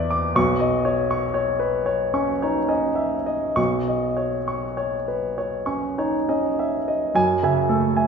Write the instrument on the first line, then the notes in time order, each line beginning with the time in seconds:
grand piano
Already playing: E2 D5 E5 D6
0.10 D6
0.35 B1 C#6
0.60 D#5
0.85 C#5
1.11 C#6
1.34 C#5
1.59 B4
1.86 C#5
2.14 C#4 C#6
2.42 D#4 C#5
2.69 C#4 D#5
2.95 E5
3.26 D#5
3.56 B1 C#6
3.88 D#5
4.17 C#5
4.48 C#6
4.77 C#5
5.08 B4
5.38 C#5
5.66 C#4 C#6
5.98 D#4 C#5
6.29 C#4 D#5
6.59 E5
6.88 D#5
7.15 F#2 G#5
7.43 C#3 E5 G#5
7.69 A3 A4
7.97 E5 G#5